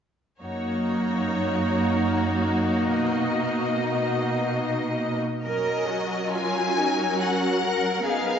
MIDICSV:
0, 0, Header, 1, 5, 480
1, 0, Start_track
1, 0, Tempo, 848656
1, 236, Time_signature, 3, 2, 24, 8
1, 714, Tempo, 814111
1, 2154, Tempo, 854701
1, 2634, Tempo, 895522
1, 3594, Tempo, 851064
1, 4745, End_track
2, 0, Start_track
2, 0, Title_t, "Violin section"
2, 0, Program_c, 0, 48
2, 3109, Note_on_c, 0, 75, 52
2, 3571, Note_off_c, 0, 75, 0
2, 3596, Note_on_c, 0, 80, 59
2, 4080, Note_off_c, 0, 80, 0
2, 4080, Note_on_c, 0, 78, 48
2, 4555, Note_on_c, 0, 77, 53
2, 4556, Note_off_c, 0, 78, 0
2, 4745, Note_off_c, 0, 77, 0
2, 4745, End_track
3, 0, Start_track
3, 0, Title_t, "Violin section"
3, 0, Program_c, 1, 48
3, 232, Note_on_c, 1, 66, 36
3, 236, Note_on_c, 1, 73, 35
3, 1651, Note_off_c, 1, 73, 0
3, 1676, Note_on_c, 1, 75, 47
3, 2976, Note_off_c, 1, 66, 0
3, 2979, Note_off_c, 1, 75, 0
3, 3110, Note_on_c, 1, 70, 38
3, 3111, Note_on_c, 1, 61, 36
3, 4532, Note_off_c, 1, 61, 0
3, 4556, Note_on_c, 1, 63, 39
3, 4745, Note_off_c, 1, 63, 0
3, 4745, Note_off_c, 1, 70, 0
3, 4745, End_track
4, 0, Start_track
4, 0, Title_t, "Cello section"
4, 0, Program_c, 2, 48
4, 236, Note_on_c, 2, 42, 39
4, 1651, Note_off_c, 2, 42, 0
4, 1674, Note_on_c, 2, 47, 49
4, 2978, Note_off_c, 2, 47, 0
4, 3110, Note_on_c, 2, 70, 43
4, 3335, Note_off_c, 2, 70, 0
4, 3351, Note_on_c, 2, 66, 38
4, 3590, Note_on_c, 2, 65, 43
4, 3593, Note_off_c, 2, 66, 0
4, 3837, Note_off_c, 2, 65, 0
4, 3837, Note_on_c, 2, 63, 40
4, 4078, Note_off_c, 2, 63, 0
4, 4078, Note_on_c, 2, 66, 41
4, 4313, Note_on_c, 2, 70, 44
4, 4317, Note_off_c, 2, 66, 0
4, 4552, Note_on_c, 2, 68, 45
4, 4553, Note_off_c, 2, 70, 0
4, 4745, Note_off_c, 2, 68, 0
4, 4745, End_track
5, 0, Start_track
5, 0, Title_t, "Viola section"
5, 0, Program_c, 3, 48
5, 238, Note_on_c, 3, 58, 32
5, 239, Note_on_c, 3, 63, 32
5, 2979, Note_off_c, 3, 58, 0
5, 2980, Note_off_c, 3, 63, 0
5, 3117, Note_on_c, 3, 54, 39
5, 4535, Note_off_c, 3, 54, 0
5, 4554, Note_on_c, 3, 59, 45
5, 4745, Note_off_c, 3, 59, 0
5, 4745, End_track
0, 0, End_of_file